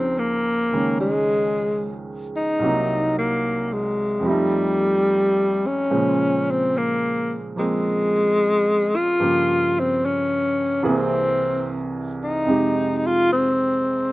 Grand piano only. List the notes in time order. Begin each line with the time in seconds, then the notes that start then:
Already playing: C#2 C#3 F3 D#4 C5
0.71 C#3 D#3 G#3 C#4
2.59 C2 C3 F#3 A#3
2.65 D#4
4.19 F2 F3
4.24 G3 A3
4.30 D#4
5.90 A#2 C#3 F3 G#3 C5
7.56 F3 A#3 C4
9.20 G2 C#3 F3 A#3 G4
10.83 C2 C3 E3 A#3 G#4
12.45 F2 C3 G#3 D#4
12.50 G4